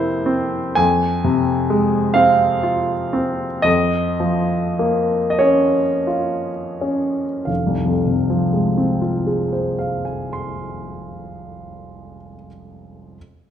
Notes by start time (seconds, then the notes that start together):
Already playing: F2 C3 A#3 C4 E4 C5
0.26 C4
0.75 F2 G#5
1.24 C3
1.70 G#3
2.14 C4 F5
2.63 F4
3.13 C4
3.62 F2 D#5
4.20 F3
4.79 A#3
5.30 D#5
5.39 C#4 C#5
6.07 F4
6.81 C#4
7.45 F1 F5
7.67 C2
7.86 F2
8.07 C3
8.30 F3
8.53 G#3
8.78 C4
9.02 F4
9.27 G#4
9.53 C5
9.79 F5
10.05 G#5
10.33 C6